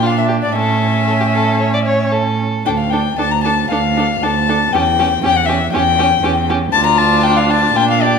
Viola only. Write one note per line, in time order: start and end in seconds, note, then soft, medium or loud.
0.03 0.56 D4 soft
0.55 2.45 C#4 medium
2.65 2.73 D4 soft
2.92 3.00 D4 soft
3.18 3.26 D4 soft
3.44 3.52 D4 soft
3.71 3.79 D4 soft
3.96 4.04 D4 soft
4.22 4.30 D4 soft
4.49 4.57 D4 soft
4.73 4.81 C#4 soft
4.99 5.07 C#4 soft
5.23 5.31 C#4 soft
5.48 5.56 C#4 medium
5.73 5.81 C#4 medium
5.98 6.06 C#4 medium
6.23 6.31 C#4 medium
6.49 6.57 C#4 medium
6.74 7.71 D4 medium
7.74 8.19 D4 medium